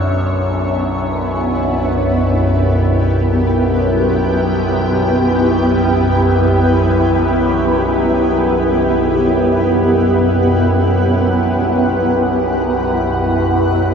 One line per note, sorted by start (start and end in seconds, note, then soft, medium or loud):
0.00 13.94 B1 medium
0.00 13.94 F#2 medium
0.00 13.94 B3 medium
0.00 2.19 D4 medium
0.00 13.94 E4 medium
0.00 1.25 C#5 medium
0.00 1.87 E5 medium
0.73 13.94 B4 medium
1.24 13.94 G4 medium
2.80 8.71 G5 medium
8.40 13.94 F#5 medium